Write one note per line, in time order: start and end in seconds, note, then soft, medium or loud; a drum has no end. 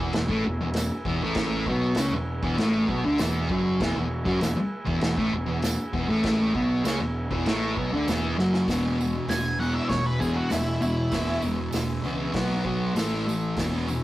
0.00 0.13 E1 medium
0.00 0.13 E2 medium
0.00 0.13 E3 medium
0.00 3.76 G#4 medium
0.00 3.76 B4 medium
0.00 3.76 E5 medium
0.13 0.28 E1 medium
0.13 0.30 E2 medium
0.13 snare loud
0.13 crash medium
0.28 0.43 A1 medium
0.28 0.43 A2 loud
0.28 0.44 A3 loud
0.28 kick loud
0.45 0.59 E1 medium
0.45 0.59 E2 medium
0.60 0.89 E1 medium
0.60 0.85 E2 medium
0.73 snare loud
0.73 tambourine loud
0.73 crash medium
1.05 1.20 E1 medium
1.05 1.20 E2 loud
1.05 1.21 E3 loud
1.05 kick loud
1.21 1.64 A1 loud
1.21 1.66 A2 loud
1.21 1.67 A3 loud
1.35 kick loud
1.35 snare loud
1.35 crash medium
1.66 1.95 B1 medium
1.66 1.97 B2 loud
1.66 1.98 B3 medium
1.66 kick loud
1.95 2.10 C#2 loud
1.95 2.12 C#3 loud
1.95 snare loud
1.95 tambourine loud
1.95 crash medium
1.99 2.13 C#4 loud
2.11 2.40 E1 medium
2.11 2.37 E2 medium
2.42 2.56 E1 loud
2.42 2.57 E2 medium
2.42 2.58 E3 medium
2.42 kick loud
2.57 2.86 A1 loud
2.57 2.87 A2 loud
2.57 2.88 A3 loud
2.57 snare loud
2.57 crash medium
2.88 3.02 B1 loud
2.88 3.03 B2 medium
2.88 3.04 B3 loud
2.88 kick loud
3.03 3.18 D2 loud
3.03 3.19 D3 medium
3.03 3.19 D4 loud
3.18 3.47 E1 loud
3.18 3.48 E2 medium
3.18 3.49 E3 loud
3.18 snare loud
3.18 tambourine loud
3.18 crash medium
3.49 3.78 F#1 medium
3.49 3.79 F#2 loud
3.49 3.80 F#3 loud
3.49 kick loud
3.78 3.94 E1 loud
3.78 3.95 E2 loud
3.78 8.63 G#4 medium
3.78 8.64 B4 medium
3.78 8.64 E5 medium
3.78 kick loud
3.78 snare loud
3.78 crash medium
3.83 3.96 E3 loud
3.95 4.24 E1 medium
3.95 4.20 E2 medium
4.25 4.39 F#1 loud
4.25 4.40 F#2 medium
4.25 4.40 F#3 loud
4.25 kick loud
4.40 4.55 E1 medium
4.40 4.55 E2 medium
4.40 snare loud
4.40 tambourine loud
4.40 crash medium
4.56 muted distorted electric guitar stroke medium
4.56 muted picked electric bass stroke soft
4.85 5.00 E1 loud
4.85 5.00 E2 medium
4.85 5.01 E3 loud
4.85 kick loud
5.01 5.15 E1 medium
5.01 5.17 E2 medium
5.01 snare loud
5.01 crash medium
5.17 5.31 A1 medium
5.17 5.32 A2 medium
5.17 5.32 A3 loud
5.17 kick loud
5.31 5.46 E1 medium
5.31 5.45 E2 medium
5.47 5.76 E1 medium
5.47 5.71 E2 medium
5.62 snare loud
5.62 tambourine loud
5.62 crash medium
5.93 6.07 E1 medium
5.93 6.08 E2 medium
5.93 6.08 E3 loud
5.93 kick loud
6.08 6.51 A1 loud
6.08 6.53 A2 loud
6.08 6.54 A3 loud
6.23 kick loud
6.23 snare loud
6.23 crash medium
6.55 6.83 B1 loud
6.55 6.84 B2 medium
6.55 6.85 B3 loud
6.55 kick loud
6.84 6.99 C#2 loud
6.84 6.99 C#3 medium
6.84 7.00 C#4 medium
6.84 snare loud
6.84 tambourine medium
6.84 crash medium
7.00 7.28 E1 medium
7.00 7.25 E2 medium
7.31 7.45 E1 loud
7.31 7.45 E2 medium
7.31 7.46 E3 medium
7.31 kick loud
7.46 7.74 A1 loud
7.46 7.76 A2 medium
7.46 7.77 A3 loud
7.46 snare medium
7.46 crash medium
7.77 7.90 B1 loud
7.77 7.91 B2 loud
7.77 7.91 B3 loud
7.77 kick loud
7.91 8.05 D2 loud
7.91 8.06 D3 medium
7.91 8.07 D4 medium
8.06 8.35 E1 loud
8.06 8.37 E2 medium
8.06 8.37 E3 loud
8.06 snare loud
8.06 tambourine medium
8.06 crash medium
8.37 8.65 F#1 loud
8.37 8.67 F#2 medium
8.37 8.68 F#3 loud
8.37 snare medium
8.54 snare medium
8.68 9.18 E1 medium
8.68 8.97 E2 medium
8.68 8.97 B2 medium
8.68 8.98 E3 medium
8.68 12.30 G#4 medium
8.68 12.31 B4 medium
8.68 12.32 E5 medium
8.68 kick loud
8.68 snare loud
8.68 open hi-hat medium
8.68 tambourine medium
9.00 9.26 E2 medium
9.00 9.27 B2 medium
9.00 tambourine medium
9.27 9.78 E1 medium
9.27 9.57 E2 medium
9.27 9.57 B2 medium
9.27 9.59 G#5 loud
9.27 snare loud
9.27 open hi-hat soft
9.27 tambourine loud
9.59 9.88 E2 medium
9.59 9.89 B2 medium
9.59 9.89 E3 medium
9.59 9.74 F#5 medium
9.59 tambourine soft
9.75 9.89 E5 medium
9.89 10.40 E1 medium
9.89 10.17 E2 medium
9.89 10.17 B2 medium
9.89 10.04 C#5 loud
9.89 kick loud
9.89 snare loud
9.89 open hi-hat soft
10.06 10.20 B4 medium
10.19 10.48 E2 medium
10.19 10.49 B2 medium
10.19 10.49 E3 loud
10.19 10.35 G#4 medium
10.19 kick medium
10.19 tambourine medium
10.36 10.51 F#4 medium
10.50 10.76 E1 medium
10.50 10.78 E2 medium
10.50 10.79 B2 medium
10.50 10.81 E4 medium
10.50 snare loud
10.50 open hi-hat medium
10.50 tambourine loud
10.81 11.06 E1 medium
10.81 11.08 E2 medium
10.81 11.09 B2 medium
10.81 11.41 E4 loud
10.81 tambourine medium
11.11 11.37 E1 medium
11.11 11.40 E2 medium
11.11 11.41 B2 medium
11.11 11.41 E3 loud
11.11 kick loud
11.11 snare loud
11.11 open hi-hat medium
11.11 tambourine medium
11.42 11.67 E1 medium
11.42 11.71 E2 medium
11.42 11.71 B2 medium
11.42 tambourine medium
11.72 11.98 E1 medium
11.72 12.01 E2 medium
11.72 12.01 B2 medium
11.72 snare loud
11.72 open hi-hat medium
11.72 tambourine medium
12.02 12.28 C#2 medium
12.02 12.33 E2 medium
12.02 12.32 B2 medium
12.02 12.33 E3 loud
12.02 tambourine soft
12.33 12.59 B1 medium
12.33 12.63 B2 medium
12.33 12.63 F#3 medium
12.33 12.64 B3 loud
12.33 12.95 F#4 medium
12.33 12.96 B4 medium
12.33 12.96 F#5 medium
12.33 kick loud
12.33 snare loud
12.33 open hi-hat medium
12.65 12.90 B1 medium
12.65 12.93 B2 medium
12.65 12.94 F#3 loud
12.65 12.94 B3 loud
12.65 kick medium
12.95 13.58 A1 medium
12.95 13.24 A2 medium
12.95 13.25 E3 medium
12.95 13.25 A3 loud
12.95 13.55 E4 medium
12.95 13.57 A4 medium
12.95 13.58 E5 medium
12.95 snare loud
12.95 open hi-hat medium
12.95 tambourine medium
13.26 13.54 A2 medium
13.26 13.54 E3 medium
13.26 tambourine medium
13.56 14.04 E1 medium
13.56 13.85 E2 medium
13.56 13.86 B2 medium
13.56 13.86 E3 loud
13.56 14.04 E4 medium
13.56 14.04 G#4 medium
13.56 14.04 B4 medium
13.56 kick loud
13.56 snare loud
13.56 open hi-hat medium
13.56 tambourine medium
13.88 14.04 E2 medium
13.88 14.04 B2 medium
13.88 tambourine medium